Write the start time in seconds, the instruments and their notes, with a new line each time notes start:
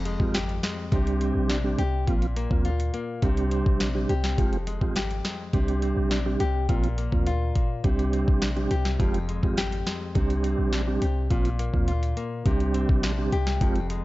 Already playing: 808-style bass F1, nylon-string guitar F2 C4
0.06 nylon-string guitar G#3, closed hi-hat
0.20 808-style bass G#1, tonewheel organ G#3 C4 F4 G4, kick
0.34 nylon-string guitar G4, snare, closed hi-hat
0.49 closed hi-hat
0.63 nylon-string guitar G#3, snare, closed hi-hat
0.92 808-style bass C2, nylon-string guitar C3, tonewheel organ G3 C4 D4 G4, kick, closed hi-hat
1.07 closed hi-hat
1.21 nylon-string guitar C4, closed hi-hat
1.35 808-style bass A#1
1.50 nylon-string guitar D4, snare, closed hi-hat
1.64 tonewheel organ G3 C4 D4 G4
1.79 808-style bass C2, nylon-string guitar G4, closed hi-hat
2.07 808-style bass A#1, nylon-string guitar A#2, tonewheel organ F3 A#3 C4 F4, kick, closed hi-hat
2.22 closed hi-hat
2.36 nylon-string guitar A#3, closed hi-hat
2.50 808-style bass D2, tonewheel organ F3 A#3 C4 F4, kick
2.65 nylon-string guitar F4, closed hi-hat
2.80 closed hi-hat
2.94 nylon-string guitar A#3, closed hi-hat
3.22 808-style bass C2, nylon-string guitar C3, tonewheel organ G3 C4 D4 G4, kick, closed hi-hat
3.37 closed hi-hat
3.51 nylon-string guitar C4, closed hi-hat
3.66 808-style bass A#1, kick
3.80 nylon-string guitar D4, snare, closed hi-hat
3.95 tonewheel organ G3 C4 D4 G4
4.09 808-style bass C2, nylon-string guitar G4, closed hi-hat
4.24 snare
4.38 808-style bass F1, nylon-string guitar F2, tonewheel organ G#3 C4 F4 G4, kick, closed hi-hat
4.53 closed hi-hat
4.67 nylon-string guitar G#3, closed hi-hat
4.81 808-style bass G#1, tonewheel organ G#3 C4 F4 G4, kick
4.96 nylon-string guitar G4, snare, closed hi-hat
5.11 closed hi-hat
5.25 nylon-string guitar G#3, snare, closed hi-hat
5.53 808-style bass C2, nylon-string guitar C3, tonewheel organ G3 C4 D4 G4, kick, closed hi-hat
5.68 closed hi-hat
5.82 nylon-string guitar C4, closed hi-hat
5.97 808-style bass A#1
6.11 nylon-string guitar D4, snare, closed hi-hat
6.26 tonewheel organ G3 C4 D4 G4
6.40 808-style bass C2, nylon-string guitar G4, closed hi-hat
6.69 808-style bass A#1, nylon-string guitar A#2, tonewheel organ F3 A#3 C4 F4, kick, closed hi-hat
6.83 closed hi-hat
6.98 nylon-string guitar A#3, closed hi-hat
7.12 808-style bass D2, tonewheel organ F3 A#3 C4 F4, kick
7.26 nylon-string guitar F4, closed hi-hat
7.55 nylon-string guitar A#3, kick, closed hi-hat
7.84 808-style bass C2, nylon-string guitar C3, tonewheel organ G3 C4 D4 G4, kick, closed hi-hat
7.99 closed hi-hat
8.13 nylon-string guitar C4, closed hi-hat
8.28 808-style bass A#1, kick
8.42 nylon-string guitar D4, snare, closed hi-hat
8.56 tonewheel organ G3 C4 D4 G4, closed hi-hat
8.71 808-style bass C2, nylon-string guitar G4, closed hi-hat
8.85 snare
8.99 808-style bass F1, nylon-string guitar F2, tonewheel organ G#3 C4 F4 G4, kick, closed hi-hat
9.14 closed hi-hat
9.29 nylon-string guitar G#3, closed hi-hat
9.43 808-style bass G#1, tonewheel organ G#3 C4 F4 G4, kick
9.57 nylon-string guitar G4, snare, closed hi-hat
9.72 closed hi-hat
9.86 nylon-string guitar G#3, snare, closed hi-hat
10.15 808-style bass C2, nylon-string guitar C3, tonewheel organ G3 C4 D4 G4, kick, closed hi-hat
10.30 closed hi-hat
10.44 nylon-string guitar C4, closed hi-hat
10.58 808-style bass A#1
10.72 nylon-string guitar D4, snare, closed hi-hat
10.87 tonewheel organ G3 C4 D4 G4
11.02 808-style bass C2, nylon-string guitar G4, closed hi-hat
11.30 808-style bass A#1, nylon-string guitar A#2, tonewheel organ F3 A#3 C4 F4, kick, closed hi-hat
11.45 closed hi-hat
11.59 nylon-string guitar A#3, closed hi-hat
11.74 808-style bass D2, tonewheel organ F3 A#3 C4 F4, kick
11.88 nylon-string guitar F4, closed hi-hat
12.03 closed hi-hat
12.17 nylon-string guitar A#3, closed hi-hat
12.46 808-style bass C2, nylon-string guitar C3, tonewheel organ G3 C4 D4 G4, kick, closed hi-hat
12.61 closed hi-hat
12.75 nylon-string guitar C4, closed hi-hat
12.89 808-style bass A#1, kick
13.03 nylon-string guitar D4, snare, closed hi-hat
13.18 tonewheel organ G3 C4 D4 G4
13.32 808-style bass C2, nylon-string guitar G4, closed hi-hat
13.47 snare
13.61 808-style bass F1, nylon-string guitar F2, tonewheel organ G#3 C4 F4 G4, kick, closed hi-hat
13.76 closed hi-hat
13.90 nylon-string guitar G#3, closed hi-hat